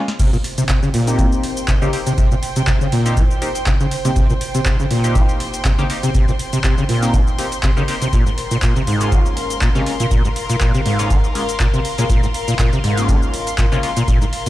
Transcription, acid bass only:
0.20 0.31 C3 medium
0.33 0.37 A#2 medium
0.58 0.64 C3 medium
0.69 0.80 C3 medium
0.83 0.89 C#3 medium
0.94 1.20 A#2 medium
1.19 1.26 F3 medium
1.68 1.76 C3 medium
1.82 1.88 C#3 medium
2.07 2.13 C3 medium
2.18 2.29 C3 medium
2.31 2.35 A#2 medium
2.56 2.62 C3 medium
2.67 2.79 C3 medium
2.81 2.87 C#3 medium
2.92 3.19 A#2 medium
3.17 3.24 F3 medium
3.67 3.74 C3 medium
3.80 3.86 C#3 medium
4.05 4.11 C3 medium
4.16 4.27 C3 medium
4.30 4.33 A#2 medium
4.55 4.61 C3 medium
4.66 4.77 C3 medium
4.79 4.86 C#3 medium
4.91 5.17 A#2 medium
5.15 5.23 F3 medium
5.65 5.72 C3 medium
5.78 5.85 C#3 medium
6.03 6.09 C3 medium
6.15 6.26 C3 medium
6.28 6.32 A#2 medium
6.53 6.59 C3 medium
6.64 6.75 C3 medium
6.78 6.84 C#3 medium
6.89 7.15 A#2 medium
7.14 7.21 F3 medium
7.63 7.71 C3 medium
7.77 7.83 C#3 medium
8.02 8.08 C3 medium
8.13 8.24 A#2 medium
8.26 8.30 G#2 medium
8.51 8.57 A#2 medium
8.62 8.74 A#2 medium
8.76 8.82 C3 medium
8.87 9.14 G#2 medium
9.12 9.20 D#3 medium
9.62 9.69 A#2 medium
9.75 9.81 C3 medium
10.00 10.06 A#2 medium
10.11 10.22 A#2 medium
10.25 10.29 G#2 medium
10.50 10.56 A#2 medium
10.61 10.72 A#2 medium
10.74 10.81 C3 medium
10.86 11.12 G#2 medium
11.10 11.18 D#3 medium
11.60 11.67 A#2 medium
11.74 11.80 C3 medium
11.98 12.05 A#2 medium
12.10 12.21 A#2 medium
12.23 12.27 G#2 medium
12.48 12.54 A#2 medium
12.59 12.70 A#2 medium
12.73 12.79 C3 medium
12.84 13.10 G#2 medium
13.09 13.16 D#3 medium
13.58 13.66 A#2 medium
13.72 13.78 C3 medium
13.97 14.03 A#2 medium
14.08 14.19 A#2 medium
14.22 14.25 G#2 medium

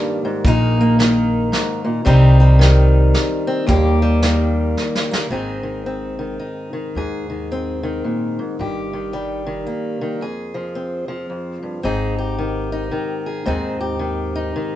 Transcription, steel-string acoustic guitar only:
0.00 0.23 G2 medium
0.00 0.98 D#3 medium
0.00 0.45 G3 medium
0.00 0.46 A#3 medium
0.00 0.42 G4 medium
0.25 0.45 G#2 medium
0.45 0.99 A#2 medium
0.45 0.79 A#3 medium
0.45 2.07 D#4 medium
0.81 2.05 A#3 medium
0.99 2.58 D#3 medium
1.52 1.86 G#2 medium
1.85 2.04 A#2 medium
2.05 2.60 C3 medium
2.05 2.40 G3 medium
2.05 3.46 C4 medium
2.05 3.69 D#4 medium
2.40 3.66 G3 medium
2.59 4.22 D#3 medium
3.47 3.66 C4 medium
3.66 5.30 D#2 medium
3.66 4.01 G3 medium
3.66 5.10 A#3 medium
3.66 5.30 G4 medium
4.02 5.31 G3 medium
4.23 5.29 D#3 medium
5.11 5.32 A#3 medium
5.30 6.92 G#2 medium
5.30 5.62 D#3 medium
5.30 5.86 C4 soft
5.30 6.39 D#4 medium
5.30 6.93 G#4 medium
5.63 6.18 D#3 soft
5.86 6.93 C4 soft
6.19 6.72 D#3 medium
6.40 9.66 D#4 soft
6.73 7.28 D#3 medium
6.96 8.38 G#2 medium
6.96 8.57 G#4 medium
7.30 7.82 D#3 soft
7.52 8.57 C4 medium
7.83 8.92 D#3 medium
8.04 8.38 A#2 soft
8.39 8.59 G#2 medium
8.60 10.20 G2 medium
8.60 10.20 G4 medium
8.93 9.45 D#3 medium
9.13 10.22 G3 medium
9.46 10.00 D#3 medium
9.67 10.21 A#3 soft
10.01 10.22 D#3 medium
10.21 11.29 F2 medium
10.21 11.83 G#4 medium
10.54 11.07 F3 soft
10.75 11.82 C4 soft
11.08 11.82 F3 medium
11.30 11.62 F2 soft
11.63 11.83 G2 soft
11.83 13.45 G#2 medium
11.83 13.44 C4 medium
11.83 12.72 D#4 medium
11.83 12.18 G#4 medium
12.18 13.26 G4 medium
12.39 12.90 D#3 medium
12.72 13.47 D#4 medium
12.91 13.98 D#3 medium
13.26 13.45 G#4 medium
13.46 14.76 G#2 medium
13.46 14.76 C4 medium
13.46 14.35 D#4 medium
13.46 13.80 G#4 medium
13.81 14.76 G4 medium
13.99 14.55 D#3 medium
14.36 14.76 D#4 medium
14.56 14.76 D#3 medium

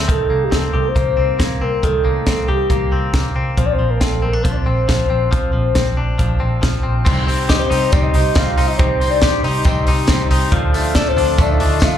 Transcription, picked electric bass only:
0.09 0.27 C2 medium
0.30 0.48 C2 medium
0.52 0.70 C2 medium
0.74 0.92 C2 loud
0.96 1.14 C2 loud
1.18 1.36 C2 medium
1.39 1.57 C2 medium
1.62 1.80 C2 medium
1.83 2.01 C2 loud
2.05 2.23 C2 medium
2.27 2.45 C2 medium
2.49 2.66 C2 loud
2.70 2.88 C2 loud
2.92 3.10 C2 medium
3.14 3.32 C2 medium
3.35 3.53 C2 medium
3.58 3.75 A#1 medium
3.79 3.97 A#1 medium
4.01 4.19 A#1 medium
4.24 4.41 A#1 loud
4.45 4.63 A#1 loud
4.66 4.84 A#1 medium
4.89 5.06 A#1 medium
5.10 5.28 A#1 medium
5.32 5.50 A#1 medium
5.54 5.72 A#1 medium
5.76 5.94 A#1 medium
5.98 6.15 A#1 medium
6.19 6.37 A#1 medium
6.42 6.59 A#1 medium
6.63 6.81 A#1 medium
6.85 7.03 A#1 medium
7.06 7.58 C2 loud
7.71 7.89 C2 loud
7.92 8.10 C2 loud
8.14 8.32 C2 loud
8.36 8.54 C2 loud
8.58 8.75 C2 medium
8.79 9.31 C2 loud
9.44 9.62 C2 loud
9.65 9.83 C2 loud
9.87 10.05 C2 loud
10.09 10.27 C2 medium
10.31 10.52 C2 medium
10.52 11.03 D2 loud
11.17 11.35 D2 loud
11.38 11.56 D2 loud
11.61 11.79 D2 loud
11.82 11.98 D2 medium

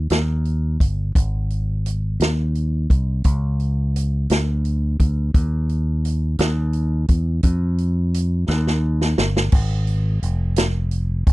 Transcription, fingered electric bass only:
0.11 0.76 D#2 medium
0.80 1.12 G1 medium
1.16 2.16 G#1 medium
2.20 2.86 D#2 medium
2.90 3.22 C2 medium
3.25 4.26 C#2 loud
4.30 4.96 D2 loud
5.00 5.32 D2 medium
5.34 6.35 D#2 loud
6.39 7.05 D#2 loud
7.09 7.41 E2 medium
7.44 8.44 F2 loud
8.48 9.14 D#2 loud
9.18 9.50 G1 medium
9.52 10.18 G#1 loud
10.23 11.23 F1 medium
11.27 11.33 G1 medium

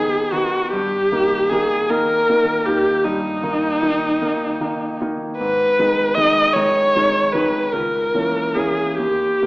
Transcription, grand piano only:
0.00 0.75 D#2 soft
0.00 0.32 D#3 soft
0.00 0.33 B3 soft
0.00 0.33 D#4 soft
0.32 0.68 D#3 soft
0.32 0.68 B3 soft
0.32 0.69 D#4 soft
0.73 1.10 G2 soft
1.12 1.46 D#3 soft
1.12 1.47 A#3 soft
1.12 1.47 D#4 soft
1.51 1.86 D#3 soft
1.51 1.86 A#3 soft
1.51 1.86 D#4 soft
1.90 2.25 D#3 soft
1.90 2.25 A#3 soft
1.90 2.25 D#4 soft
2.29 2.63 D#3 soft
2.29 2.63 A#3 soft
2.29 2.64 D#4 soft
2.67 3.01 D#3 soft
2.67 3.01 A#3 soft
2.67 3.01 D#4 soft
3.05 3.42 G2 soft
3.43 3.78 D#3 soft
3.43 3.78 A#3 soft
3.43 3.78 D#4 soft
3.82 4.17 D#3 soft
3.82 4.17 A#3 soft
3.82 4.17 D#4 soft
4.21 4.57 D#3 soft
4.21 4.57 A#3 soft
4.21 4.57 D#4 soft
4.60 4.96 D#3 soft
4.60 4.97 A#3 soft
4.60 4.97 D#4 soft
5.01 5.36 D#3 soft
5.01 5.36 A#3 soft
5.01 5.36 D#4 soft
5.40 5.77 G#2 soft
5.79 6.13 D#3 soft
5.79 6.13 G#3 soft
5.79 6.14 D#4 soft
6.17 6.51 D#3 soft
6.17 6.52 G#3 soft
6.17 6.52 D#4 soft
6.55 6.90 D#3 soft
6.55 6.91 G#3 soft
6.55 6.91 D#4 soft
6.95 7.30 D#3 soft
6.95 7.31 G#3 soft
6.95 7.31 D#4 soft
7.34 7.69 D#3 soft
7.34 7.70 G#3 soft
7.34 7.70 D#4 soft
7.73 8.12 C#2 soft
8.14 8.51 E3 soft
8.14 8.52 A#3 soft
8.14 8.52 C#4 soft
8.56 8.94 E3 soft
8.56 8.95 A#3 soft
8.56 8.95 C#4 soft
8.99 9.42 D#2 soft
9.42 9.46 D#3 soft
9.42 9.46 A#3 soft

